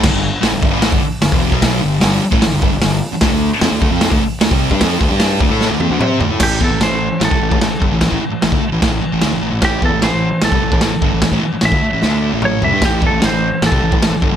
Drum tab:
CC |x---------------|----------------|----------------|----------------|
HH |----o---o---o---|o---o---o---o---|o---o---o---o---|o---o-----------|
SD |o---o---o---o---|o---o---o---o---|o---o---o---o---|o---o---o-------|
T1 |----------------|----------------|----------------|----------o-----|
T2 |----------------|----------------|----------------|------------o---|
FT |----------------|----------------|----------------|--------------o-|
BD |o-----o--o---o-o|o------o--o-----|o-----o--o---o-o|o-o---o---------|

CC |x---x---x---x---|x---x---x---x---|x---x---x---x---|x---x-----------|
HH |----------------|----------------|----------------|----------------|
SD |o---o---o---o---|o---o---o---o---|o---o---o---o---|o---o---o-------|
T1 |----------------|----------------|----------------|----------------|
T2 |----------------|----------------|----------------|------------o---|
FT |----------------|----------------|----------------|--------------o-|
BD |o-o------o-o--o-|oo---o--o-------|o-o------o-o--o-|oo---o----------|

CC |x---x---x---x---|
HH |----------------|
SD |o---o---o---o---|
T1 |----------------|
T2 |----------------|
FT |----------------|
BD |o-o------o-o--o-|